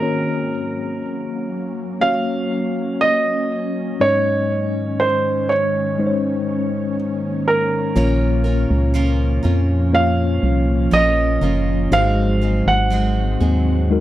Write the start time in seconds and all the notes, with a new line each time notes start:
Already playing: A#4
0.00 F#3 A#3 C#4 F#4 C#5
2.01 A#3 C#4 F#4 C#5 F5
3.01 D#5
4.00 G#2 D#3 G#3 C#4 D#4 C#5 D#5
5.00 C5
5.49 C#5
5.98 G#3 A#3 C#4 D#4 C5
6.07 C#5
7.48 A#4
7.95 A#1 A#2 F3 A#3 C#4 F4 A#4 C#5
8.44 C#4 F4 A#4
8.71 C#2
8.94 F3 C#4 F4 A#4
9.43 F2 C#4 F4 A#4
9.92 A#3 C#4 F4 C#5 F5
10.43 C2
10.91 A#1 F3 C#4 F4 A#4 D#5
11.41 F#1 C#4 F4 A#4
11.91 G#1 G#2 D#3 F#3 G#3 C4 D#4 F#4 G#4 C5 F5
12.42 F#3 G#3 C4 G#4
12.67 G#1 F#5
12.90 F#3 G#3 C4 G#4
13.40 D#2 F#3 G#3 C4 G#4
13.90 G#3 D#4 F#4 A#4